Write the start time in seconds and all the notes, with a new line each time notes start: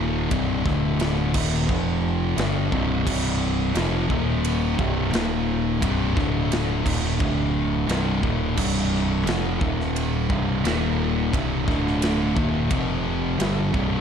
Already playing: D#1 D#2 A#2 D#3
0.30 C1 C2 G2 C3, kick, ride bell
0.64 D1 D2 A2 D3, kick, snare
1.00 snare, ride bell
1.34 D#1 D#2 A#2 D#3, kick, crash
1.54 snare
1.68 F1 F2 C3 F3, kick
2.36 G1 G2 D3 G3, snare, ride bell
2.71 C1 C2 G2 C3, kick
3.06 C1 C2 G2 C3, kick, crash
3.74 F1 F2 C3 F3, snare, ride bell
4.09 D#1 D#2 A#2 D#3, kick
4.45 ride bell
4.79 C1 C2 G2 C3, kick
5.12 D#1 D#2 A#2 D#3, snare, ride bell
5.82 C1 C2 G2 C3, kick, ride bell
6.16 D1 D2 A2 D3, kick, snare
6.52 snare, ride bell
6.83 D#1 D#2 A#2 D#3, kick, crash
7.05 snare
7.19 D1 D2 A2 D3, kick
7.87 C1 C2 G2 C3, snare, ride bell
8.22 D#1 D#2 A#2 D#3, kick
8.57 C1 C2 G2 C3, kick, crash
8.95 snare
9.25 F1 F2 C3 F3, ride bell
9.29 snare
9.60 D#1 D#2 A#2 D#3, kick
9.80 snare
9.96 ride bell
10.29 C1 C2 G2 C3, kick
10.64 D#1 D#2 A#2 D#3, snare, ride bell
11.33 C1 C2 G2 C3, kick, ride bell
11.67 D1 D2 A2 D3, kick, snare
11.87 snare
12.02 snare, ride bell
12.35 D#1 D#2 A#2 D#3, kick
12.70 F1 F2 C3 F3, kick, ride bell
13.39 G1 G2 D3 G3, snare, ride bell
13.73 C1 C2 G2 C3, kick